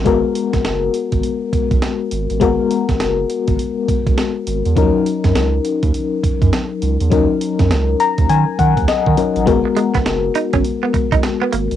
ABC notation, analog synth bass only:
X:1
M:4/4
L:1/16
Q:"Swing 16ths" 1/4=102
K:Abdor
V:1 name="Analog synth bass" clef=bass
A,,, z2 B,,, G,,,2 z A,,, z2 C,, C,, z2 A,,, =A,,, | A,,, z2 B,,, G,,,2 z A,,, z2 C,, C,, z2 A,,, _F,, | E,, z2 G,, D,,2 z E,, z2 G,, G,, z2 D,, _F,, | E,, z2 G,, D,,2 z E,, E, z E, E,, z E, z =A,,, |
A,,, z2 B,,, G,,,2 z A,,, z2 C,, C,, z2 A,,, =A,,, |]